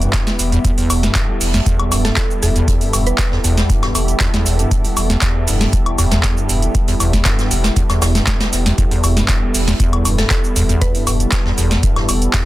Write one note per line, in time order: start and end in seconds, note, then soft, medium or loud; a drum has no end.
0.00 0.28 G2 medium
0.00 12.45 G3 medium
0.00 12.45 B3 medium
0.00 12.45 E4 medium
0.00 12.45 G4 medium
0.00 0.63 B4 medium
0.00 12.45 E5 medium
0.00 12.45 G5 medium
0.00 closed hi-hat medium
0.00 shaker soft
0.13 kick loud
0.13 snare loud
0.13 clap loud
0.13 closed hi-hat medium
0.13 shaker soft
0.27 0.34 E1 medium
0.27 snare medium
0.27 closed hi-hat soft
0.27 shaker soft
0.39 0.58 E1 loud
0.39 closed hi-hat medium
0.39 open hi-hat loud
0.39 shaker medium
0.52 0.59 E2 loud
0.52 closed hi-hat soft
0.52 shaker soft
0.64 0.72 E2 loud
0.64 8.77 A4 medium
0.64 kick loud
0.64 closed hi-hat medium
0.64 shaker soft
0.78 1.05 E2 loud
0.78 open hi-hat medium
0.78 shaker soft
0.90 1.09 E1 loud
0.90 closed hi-hat medium
0.90 open hi-hat loud
0.90 high woodblock medium
0.90 shaker medium
1.03 1.30 G2 medium
1.03 snare medium
1.03 closed hi-hat medium
1.03 shaker soft
1.15 kick loud
1.15 snare loud
1.15 clap loud
1.15 closed hi-hat medium
1.15 shaker soft
1.29 1.35 E1 medium
1.41 1.60 E1 medium
1.41 open hi-hat medium
1.41 open hi-hat loud
1.41 shaker medium
1.54 1.61 E2 loud
1.54 snare medium
1.54 closed hi-hat medium
1.54 shaker soft
1.66 1.93 E2 loud
1.66 kick loud
1.66 closed hi-hat medium
1.66 shaker soft
1.79 1.89 E1 medium
1.79 closed hi-hat soft
1.79 high woodblock medium
1.92 2.11 E1 medium
1.92 2.19 G2 medium
1.92 closed hi-hat medium
1.92 open hi-hat loud
1.92 high woodblock medium
1.92 shaker medium
2.05 2.13 A4 medium
2.05 snare medium
2.05 closed hi-hat medium
2.05 shaker soft
2.17 2.24 E1 medium
2.17 2.26 A4 medium
2.17 kick loud
2.17 snare loud
2.17 clap loud
2.17 closed hi-hat medium
2.17 shaker soft
2.31 shaker soft
2.42 2.62 E1 loud
2.42 2.50 E2 loud
2.42 2.63 A4 medium
2.42 closed hi-hat medium
2.42 open hi-hat loud
2.42 shaker medium
2.56 2.83 E2 loud
2.56 closed hi-hat soft
2.56 shaker soft
2.68 kick loud
2.68 closed hi-hat medium
2.68 shaker soft
2.81 3.08 G2 medium
2.81 open hi-hat medium
2.81 shaker soft
2.93 3.13 E1 loud
2.93 closed hi-hat medium
2.93 open hi-hat loud
2.93 high woodblock medium
2.93 shaker medium
3.07 3.13 E1 medium
3.07 3.44 B4 medium
3.07 closed hi-hat medium
3.07 shaker soft
3.18 kick loud
3.18 snare loud
3.18 clap loud
3.18 closed hi-hat medium
3.18 shaker soft
3.32 3.39 E2 loud
3.32 snare medium
3.44 3.63 E1 medium
3.44 3.71 E2 loud
3.44 closed hi-hat medium
3.44 open hi-hat loud
3.44 shaker medium
3.57 snare medium
3.57 closed hi-hat medium
3.57 shaker soft
3.70 3.97 G2 medium
3.70 kick loud
3.70 closed hi-hat medium
3.70 shaker soft
3.82 3.92 E1 medium
3.82 snare soft
3.82 closed hi-hat soft
3.82 high woodblock medium
3.95 4.02 E1 medium
3.95 4.14 E1 medium
3.95 closed hi-hat medium
3.95 open hi-hat loud
3.95 high woodblock medium
3.95 shaker medium
4.08 closed hi-hat medium
4.08 shaker soft
4.20 4.28 E2 loud
4.20 kick loud
4.20 snare loud
4.20 clap loud
4.20 closed hi-hat medium
4.20 shaker soft
4.34 4.61 E2 loud
4.34 snare medium
4.34 snare soft
4.34 closed hi-hat soft
4.34 shaker soft
4.46 4.65 E1 loud
4.46 closed hi-hat medium
4.46 open hi-hat loud
4.46 shaker medium
4.59 4.86 G2 medium
4.59 closed hi-hat soft
4.59 closed hi-hat medium
4.59 shaker soft
4.71 kick loud
4.71 closed hi-hat medium
4.71 shaker soft
4.84 4.91 E1 medium
4.84 open hi-hat medium
4.84 shaker soft
4.97 5.16 E1 loud
4.97 closed hi-hat medium
4.97 open hi-hat loud
4.97 high woodblock medium
4.97 shaker medium
5.10 5.17 E2 loud
5.10 snare medium
5.10 closed hi-hat medium
5.10 shaker soft
5.22 5.49 E2 loud
5.22 kick loud
5.22 snare loud
5.22 clap loud
5.22 closed hi-hat medium
5.22 shaker soft
5.47 5.67 E1 medium
5.47 5.75 G2 medium
5.47 open hi-hat medium
5.47 open hi-hat loud
5.47 shaker medium
5.61 snare medium
5.61 closed hi-hat medium
5.61 shaker soft
5.73 5.80 E1 medium
5.73 kick loud
5.73 closed hi-hat medium
5.73 shaker soft
5.86 5.95 E1 medium
5.86 closed hi-hat soft
5.86 high woodblock medium
5.98 6.18 E1 medium
5.98 6.06 E2 loud
5.98 closed hi-hat medium
5.98 open hi-hat loud
5.98 high woodblock medium
5.98 shaker medium
6.11 6.39 E2 loud
6.11 snare medium
6.11 closed hi-hat medium
6.11 shaker soft
6.23 kick loud
6.23 snare loud
6.23 clap loud
6.23 closed hi-hat medium
6.23 shaker soft
6.37 6.64 G2 medium
6.37 shaker soft
6.49 6.69 E1 loud
6.49 closed hi-hat medium
6.49 open hi-hat loud
6.49 shaker medium
6.62 6.69 E1 medium
6.62 closed hi-hat medium
6.62 shaker soft
6.74 kick loud
6.74 closed hi-hat medium
6.74 shaker soft
6.88 6.95 E2 loud
6.88 closed hi-hat medium
6.88 open hi-hat medium
6.88 shaker soft
7.00 7.19 E1 loud
7.00 7.27 E2 loud
7.00 open hi-hat loud
7.00 high woodblock medium
7.00 shaker medium
7.13 kick medium
7.13 snare medium
7.13 closed hi-hat medium
7.13 shaker soft
7.25 7.53 G2 medium
7.25 kick loud
7.25 snare loud
7.25 clap loud
7.25 closed hi-hat medium
7.25 shaker soft
7.39 snare medium
7.39 closed hi-hat soft
7.39 shaker soft
7.51 7.70 E1 medium
7.51 7.58 E1 medium
7.51 closed hi-hat medium
7.51 open hi-hat loud
7.51 shaker medium
7.63 snare medium
7.63 closed hi-hat medium
7.63 shaker soft
7.76 7.84 E2 loud
7.76 kick loud
7.76 closed hi-hat loud
7.76 closed hi-hat medium
7.76 shaker soft
7.89 7.99 E1 medium
7.89 8.17 E2 loud
7.89 snare medium
7.89 closed hi-hat soft
7.89 high woodblock medium
7.89 shaker soft
8.02 8.21 E1 medium
8.02 snare loud
8.02 closed hi-hat medium
8.02 open hi-hat loud
8.02 high woodblock medium
8.02 shaker medium
8.15 8.42 G2 medium
8.15 snare medium
8.15 closed hi-hat medium
8.15 shaker soft
8.27 kick loud
8.27 snare loud
8.27 snare medium
8.27 clap loud
8.27 closed hi-hat medium
8.27 shaker soft
8.40 8.47 E1 medium
8.40 snare loud
8.40 snare medium
8.40 closed hi-hat soft
8.40 closed hi-hat medium
8.40 shaker soft
8.53 8.72 E1 medium
8.53 snare soft
8.53 open hi-hat loud
8.53 shaker medium
8.66 8.73 E2 loud
8.66 snare medium
8.66 closed hi-hat medium
8.66 shaker soft
8.78 8.85 E2 loud
8.78 12.45 A4 medium
8.78 kick loud
8.78 closed hi-hat medium
8.78 shaker soft
8.91 9.18 E2 loud
8.91 open hi-hat medium
8.91 shaker soft
9.04 9.23 E1 loud
9.04 closed hi-hat medium
9.04 open hi-hat loud
9.04 high woodblock medium
9.04 shaker medium
9.17 9.44 G2 medium
9.17 snare medium
9.17 closed hi-hat medium
9.17 shaker soft
9.28 kick loud
9.28 snare loud
9.28 clap loud
9.28 closed hi-hat medium
9.28 shaker soft
9.42 9.49 E1 medium
9.54 9.74 E1 medium
9.54 open hi-hat medium
9.54 open hi-hat loud
9.54 shaker medium
9.68 9.74 E2 loud
9.68 snare medium
9.68 closed hi-hat medium
9.68 shaker soft
9.80 10.07 E2 loud
9.80 kick loud
9.80 closed hi-hat medium
9.80 shaker soft
9.93 10.02 E1 medium
9.93 closed hi-hat soft
9.93 high woodblock medium
10.05 10.24 E1 medium
10.05 10.32 G2 medium
10.05 closed hi-hat medium
10.05 open hi-hat loud
10.05 high woodblock medium
10.05 shaker medium
10.18 10.26 A4 medium
10.18 snare medium
10.18 closed hi-hat medium
10.18 shaker soft
10.30 10.38 E1 medium
10.30 10.39 A4 medium
10.30 kick loud
10.30 snare loud
10.30 clap loud
10.30 closed hi-hat medium
10.30 shaker soft
10.44 shaker soft
10.56 10.75 E1 loud
10.56 10.63 E2 loud
10.56 closed hi-hat medium
10.56 open hi-hat loud
10.56 shaker medium
10.69 10.96 E2 loud
10.69 closed hi-hat soft
10.69 closed hi-hat medium
10.69 shaker soft
10.81 11.32 B4 medium
10.81 kick loud
10.81 closed hi-hat medium
10.81 shaker soft
10.95 11.22 G2 medium
10.95 open hi-hat medium
10.95 shaker soft
11.07 11.26 E1 loud
11.07 closed hi-hat medium
11.07 open hi-hat loud
11.07 high woodblock medium
11.07 shaker medium
11.20 11.27 E1 medium
11.20 closed hi-hat medium
11.20 shaker soft
11.32 kick loud
11.32 snare loud
11.32 clap loud
11.32 closed hi-hat medium
11.32 shaker soft
11.45 11.52 E2 loud
11.45 snare medium
11.58 11.77 E1 medium
11.58 11.85 E2 loud
11.58 closed hi-hat medium
11.58 open hi-hat loud
11.58 shaker medium
11.71 snare medium
11.71 closed hi-hat medium
11.71 shaker soft
11.83 12.10 G2 medium
11.83 kick loud
11.83 closed hi-hat medium
11.83 shaker soft
11.96 12.06 E1 medium
11.96 snare soft
11.96 closed hi-hat soft
11.96 high woodblock medium
12.09 12.28 E1 medium
12.09 12.16 E1 medium
12.09 closed hi-hat medium
12.09 open hi-hat loud
12.09 high woodblock medium
12.09 shaker medium
12.22 closed hi-hat medium
12.22 shaker soft
12.34 12.41 E2 loud
12.34 kick loud
12.34 snare loud
12.34 clap loud
12.34 closed hi-hat medium
12.34 shaker soft